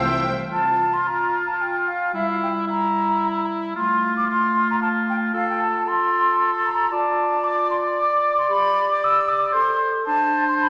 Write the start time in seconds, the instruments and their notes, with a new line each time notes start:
Already playing: double bass section C2, cello section A3, french horn section C4, violin section A4 G5, clarinet C5, trumpet section C5, viola section C5 E5, oboe E5, flute G5
0.00 french horn section E3
0.52 oboe F4, clarinet F4, flute A5
0.93 flute C6
1.07 flute A#5
1.48 flute A5
1.62 flute G5
1.88 flute F5
2.14 clarinet G3, oboe E4, flute E5
2.30 flute F5
2.43 flute G5
2.67 oboe E4, flute A#5
3.76 clarinet A3, oboe F4, flute C6
4.17 flute D6
4.29 oboe F4, flute C6
4.71 flute A#5
4.82 oboe F4, flute A5
5.10 flute G5
5.34 clarinet F4, oboe A4, flute F5
5.49 flute G5
5.60 flute A5
5.86 oboe A4, flute C6
6.66 flute A#5
6.92 clarinet F4, oboe D5, flute A5
7.44 flute D6
7.71 flute C6
7.97 flute D6
8.38 flute C6
8.49 clarinet G4, flute B5
8.91 flute D6
9.04 flute E6
9.29 flute D6
9.53 clarinet A4, oboe C5, flute C6
10.06 clarinet D4, oboe C5, flute A5
10.48 flute C6
10.61 flute B5